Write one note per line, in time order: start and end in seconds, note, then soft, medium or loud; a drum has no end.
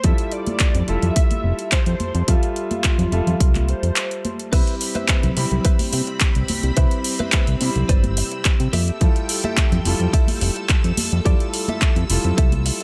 0.03 0.13 F2 medium
0.03 0.85 G3 medium
0.03 0.85 E4 medium
0.03 0.85 F4 medium
0.03 0.86 A4 medium
0.03 0.34 E5 loud
0.03 kick loud
0.03 closed hi-hat medium
0.18 closed hi-hat soft
0.32 0.90 D5 loud
0.32 closed hi-hat medium
0.47 closed hi-hat soft
0.47 high conga medium
0.60 kick medium
0.60 clap loud
0.60 closed hi-hat medium
0.75 0.83 F2 medium
0.75 closed hi-hat soft
0.75 low conga medium
0.87 0.98 F1 medium
0.87 2.25 G3 medium
0.87 2.25 E4 medium
0.87 2.25 F4 medium
0.87 2.26 A4 medium
0.87 1.74 E5 loud
0.87 closed hi-hat medium
1.02 1.11 F2 medium
1.02 closed hi-hat soft
1.02 low conga medium
1.16 kick loud
1.16 closed hi-hat medium
1.31 closed hi-hat soft
1.31 high conga medium
1.44 1.53 F1 medium
1.59 closed hi-hat soft
1.72 2.28 C5 loud
1.72 kick medium
1.72 clap loud
1.72 closed hi-hat medium
1.86 1.95 F2 medium
1.86 closed hi-hat soft
2.00 2.12 F2 soft
2.00 closed hi-hat medium
2.00 high conga medium
2.15 2.23 F2 loud
2.15 closed hi-hat soft
2.27 2.38 F2 medium
2.27 3.09 G3 medium
2.27 3.71 F4 loud
2.27 3.10 F4 medium
2.27 3.10 A4 medium
2.27 3.09 E5 medium
2.27 kick loud
2.27 closed hi-hat medium
2.43 closed hi-hat soft
2.56 closed hi-hat medium
2.71 closed hi-hat soft
2.71 high conga medium
2.84 kick medium
2.84 clap loud
2.84 closed hi-hat medium
2.99 3.07 F2 medium
2.99 closed hi-hat soft
2.99 low conga medium
3.11 3.22 F1 medium
3.11 4.49 G3 medium
3.11 4.50 F4 medium
3.11 4.50 A4 medium
3.11 4.49 E5 medium
3.11 closed hi-hat medium
3.27 3.35 F2 medium
3.27 closed hi-hat soft
3.27 low conga medium
3.40 3.74 C2 medium
3.40 kick loud
3.40 closed hi-hat medium
3.55 clap soft
3.55 closed hi-hat soft
3.55 high conga medium
3.69 4.53 C5 medium
3.69 closed hi-hat soft
3.83 3.91 F2 medium
3.83 closed hi-hat soft
3.96 clap loud
3.96 closed hi-hat medium
4.11 closed hi-hat soft
4.25 closed hi-hat medium
4.25 high conga medium
4.39 closed hi-hat soft
4.52 4.62 C2 medium
4.52 5.33 G3 medium
4.52 8.69 C4 medium
4.52 5.34 C4 medium
4.52 5.34 E4 medium
4.52 4.74 B4 loud
4.52 4.74 C5 medium
4.52 4.75 E5 loud
4.52 8.69 B5 medium
4.52 5.34 B5 medium
4.52 12.84 E6 medium
4.52 kick loud
4.52 closed hi-hat medium
4.52 crash medium
4.67 closed hi-hat soft
4.81 open hi-hat loud
4.95 5.30 B4 medium
4.95 5.30 C5 medium
4.95 5.31 E5 medium
4.95 closed hi-hat soft
4.95 high conga medium
5.08 kick medium
5.08 clap loud
5.08 closed hi-hat medium
5.23 5.32 C2 medium
5.23 closed hi-hat soft
5.23 low conga medium
5.36 5.46 C3 medium
5.36 6.74 G3 medium
5.36 6.74 C4 medium
5.36 6.74 E4 medium
5.36 6.74 B5 medium
5.36 open hi-hat loud
5.51 5.60 C2 medium
5.51 closed hi-hat soft
5.51 low conga medium
5.65 5.80 B4 medium
5.65 5.80 C5 medium
5.65 5.80 E5 medium
5.65 kick loud
5.65 closed hi-hat medium
5.79 open hi-hat medium
5.79 high conga medium
5.92 6.02 C3 medium
5.92 muted clean electric guitar stroke medium
5.92 open hi-hat loud
6.07 muted clean electric guitar stroke soft
6.07 closed hi-hat soft
6.20 kick loud
6.20 clap loud
6.20 closed hi-hat medium
6.35 6.44 C2 medium
6.35 closed hi-hat soft
6.48 6.61 C2 soft
6.48 open hi-hat loud
6.48 high conga medium
6.63 6.72 C2 loud
6.63 closed hi-hat soft
6.76 6.86 C2 loud
6.76 7.58 G3 medium
6.76 7.58 C4 medium
6.76 7.58 E4 medium
6.76 6.98 B4 loud
6.76 6.99 C5 medium
6.76 6.99 E5 loud
6.76 7.59 B5 medium
6.76 kick loud
6.76 closed hi-hat medium
6.91 closed hi-hat soft
7.04 open hi-hat loud
7.19 7.54 B4 medium
7.19 7.55 C5 medium
7.19 7.55 E5 medium
7.19 closed hi-hat soft
7.19 high conga medium
7.32 kick loud
7.32 clap loud
7.32 closed hi-hat medium
7.47 7.56 C2 medium
7.47 closed hi-hat soft
7.60 7.70 C3 medium
7.60 8.71 G3 medium
7.60 8.72 C4 medium
7.60 8.72 E4 medium
7.60 8.72 B5 medium
7.60 open hi-hat loud
7.76 7.84 C2 medium
7.76 closed hi-hat soft
7.76 low conga medium
7.89 8.23 G1 medium
7.89 8.04 B4 medium
7.89 8.04 C5 medium
7.89 8.04 D5 medium
7.89 kick loud
7.89 closed hi-hat medium
8.04 closed hi-hat soft
8.04 high conga medium
8.17 muted clean electric guitar stroke medium
8.17 open hi-hat loud
8.31 muted clean electric guitar stroke soft
8.31 closed hi-hat soft
8.45 kick loud
8.45 clap loud
8.45 closed hi-hat medium
8.60 8.68 C3 medium
8.60 closed hi-hat soft
8.72 8.91 F2 medium
8.72 9.29 G4 medium
8.72 12.84 A4 medium
8.72 9.30 A4 medium
8.72 9.30 E5 medium
8.72 10.95 G5 medium
8.72 open hi-hat loud
8.72 high conga medium
8.88 closed hi-hat soft
9.00 9.11 F2 medium
9.00 9.82 G3 medium
9.00 9.82 E4 medium
9.00 9.83 F4 medium
9.00 9.83 A4 medium
9.00 kick loud
9.00 closed hi-hat medium
9.16 closed hi-hat soft
9.29 open hi-hat loud
9.44 9.79 G4 medium
9.44 9.79 A4 medium
9.44 9.79 E5 medium
9.44 closed hi-hat soft
9.44 high conga medium
9.57 kick loud
9.57 clap loud
9.57 closed hi-hat medium
9.72 9.80 F2 medium
9.72 closed hi-hat soft
9.72 low conga medium
9.85 9.95 F1 medium
9.85 11.22 G3 medium
9.85 11.23 E4 medium
9.85 11.23 F4 medium
9.85 11.23 A4 medium
9.85 open hi-hat loud
10.00 10.09 F2 medium
10.00 closed hi-hat soft
10.00 low conga medium
10.13 10.28 G4 medium
10.13 10.28 A4 medium
10.13 10.29 E5 medium
10.13 kick loud
10.13 closed hi-hat medium
10.28 open hi-hat medium
10.28 high conga medium
10.41 10.51 F1 medium
10.41 muted clean electric guitar stroke medium
10.41 open hi-hat loud
10.56 muted clean electric guitar stroke soft
10.56 closed hi-hat soft
10.69 kick loud
10.69 clap loud
10.69 closed hi-hat medium
10.84 10.93 F2 medium
10.84 closed hi-hat soft
10.97 11.10 F2 soft
10.97 open hi-hat loud
10.97 high conga loud
11.12 11.21 F2 medium
11.12 closed hi-hat soft
11.25 11.35 F2 loud
11.25 12.06 G3 medium
11.25 12.07 E4 medium
11.25 12.07 F4 medium
11.25 11.47 G4 loud
11.25 11.47 A4 loud
11.25 12.07 A4 medium
11.25 11.47 D5 loud
11.25 kick loud
11.25 closed hi-hat medium
11.40 closed hi-hat soft
11.54 open hi-hat loud
11.68 12.03 G4 medium
11.68 12.03 A4 medium
11.68 12.04 E5 medium
11.68 closed hi-hat soft
11.68 high conga medium
11.82 kick loud
11.82 clap loud
11.82 closed hi-hat medium
11.96 12.05 F2 medium
11.96 closed hi-hat soft
12.09 12.19 F1 medium
12.09 12.84 G3 medium
12.09 12.84 E4 medium
12.09 12.84 F4 medium
12.09 12.84 A4 medium
12.09 open hi-hat loud
12.24 12.33 F2 medium
12.24 closed hi-hat soft
12.24 low conga medium
12.37 12.72 C2 medium
12.37 12.52 G4 medium
12.37 12.53 A4 medium
12.37 12.53 E5 medium
12.37 kick loud
12.37 closed hi-hat medium
12.52 closed hi-hat soft
12.52 high conga medium
12.65 muted clean electric guitar stroke medium
12.65 open hi-hat loud
12.80 muted clean electric guitar stroke soft
12.80 closed hi-hat soft